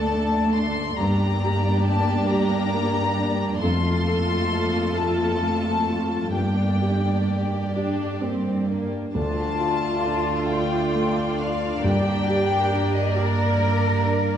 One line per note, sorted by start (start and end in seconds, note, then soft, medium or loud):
0.00 0.95 D2 soft
0.00 0.96 D2 soft
0.00 0.96 A3 soft
0.00 0.57 D4 soft
0.00 0.96 D4 soft
0.00 0.96 A4 soft
0.00 1.02 A4 soft
0.00 0.96 D5 soft
0.00 0.56 A5 medium
0.13 0.83 A3 soft
0.56 1.00 D4 soft
0.56 1.00 C6 medium
0.98 3.59 G2 soft
0.98 3.60 G2 medium
0.98 3.59 A#3 soft
0.98 3.59 D4 soft
0.98 3.59 G4 soft
0.98 3.59 D5 soft
0.98 1.86 A#5 medium
1.44 2.14 G4 soft
1.86 2.57 D4 soft
1.86 2.29 A5 medium
2.29 3.01 G4 soft
2.29 3.62 A#5 medium
2.74 3.45 A#3 soft
3.19 3.63 D4 soft
3.61 6.32 F2 soft
3.61 6.32 F2 medium
3.61 6.32 A3 medium
3.61 6.32 F4 soft
3.61 6.31 A4 soft
3.61 4.94 C6 medium
4.08 4.80 A4 soft
4.53 5.25 F4 soft
4.96 5.71 A4 soft
4.96 6.35 A5 medium
5.43 6.17 A3 soft
5.89 6.36 F4 soft
6.35 8.92 G2 soft
6.35 9.12 G2 soft
6.35 7.63 A#3 soft
6.35 7.63 D4 soft
6.35 8.92 G4 soft
6.35 8.92 D5 soft
6.35 7.73 G5 medium
6.82 7.57 G4 soft
7.29 8.04 D4 soft
7.76 8.20 D4 soft
7.76 8.51 G4 soft
8.22 8.97 A#3 soft
8.22 8.70 C4 soft
8.69 9.15 A#3 soft
8.69 9.15 D4 soft
9.14 11.80 D2 soft
9.14 10.47 D3 medium
9.14 11.81 A3 soft
9.14 14.37 D4 soft
9.14 11.80 F4 soft
9.14 11.81 F4 medium
9.14 14.37 D5 soft
9.14 10.47 A5 medium
9.60 10.33 F4 soft
10.06 10.78 D4 soft
10.51 11.23 F4 soft
10.51 11.40 G5 medium
10.95 11.67 A3 soft
11.40 11.84 D4 soft
11.40 11.84 F5 medium
11.84 14.37 G2 soft
11.84 13.13 G2 medium
11.84 14.37 G2 soft
11.84 14.37 A#3 soft
11.84 13.14 G4 soft
11.84 14.37 A#4 soft
11.84 12.95 G5 medium
12.29 12.99 G4 soft
12.73 13.43 D4 soft
12.95 13.16 D#5 medium
13.15 13.87 G4 soft
13.15 14.37 A#4 medium
13.15 14.37 D5 medium
13.60 14.32 A#3 soft
14.05 14.37 D4 soft